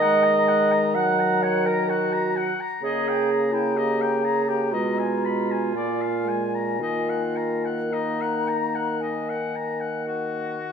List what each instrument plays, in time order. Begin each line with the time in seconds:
Already playing: bassoon D#3, clarinet D#5, flute A#5
0.01 french horn G#3, oboe F#5
0.24 oboe A#5
0.48 oboe F#5
0.72 oboe A#5
0.95 french horn F#3, clarinet F#5, oboe F#5
1.20 oboe A#5
1.43 clarinet C#5, oboe F#5
1.66 clarinet A#4, oboe A#5
1.89 clarinet F#4, oboe F#5
2.13 oboe A#5
2.37 oboe F#5
2.61 oboe A#5
2.82 bassoon C#3, french horn A#3, clarinet G#4, oboe D#5, flute A#5
3.08 oboe G5
3.31 oboe A#5
3.52 clarinet E4, oboe G5
3.76 clarinet G4, oboe D#5
4.02 oboe G5
4.23 clarinet G#4, oboe A#5
4.48 clarinet G4, oboe G5
4.72 bassoon B2, french horn G#3, clarinet F4, oboe D#5
4.99 oboe G#5
5.25 oboe B5
5.51 oboe G#5
5.73 bassoon A#2, french horn A#3, oboe D5, flute G#5
6.01 oboe F5
6.26 french horn G#3, oboe G#5
6.55 oboe A#5
6.80 bassoon D#3, french horn A#3, clarinet F4, oboe D#5
7.10 oboe F#5
7.37 oboe A#5
7.65 oboe F#5
7.91 clarinet D#4, oboe D#5, flute A#5
8.21 oboe F#5
8.49 oboe A#5
8.75 oboe F#5
9.01 oboe D#5, flute G#5
9.30 oboe F#5
9.56 oboe A#5
9.81 oboe F#5
10.07 oboe F#4, flute F#5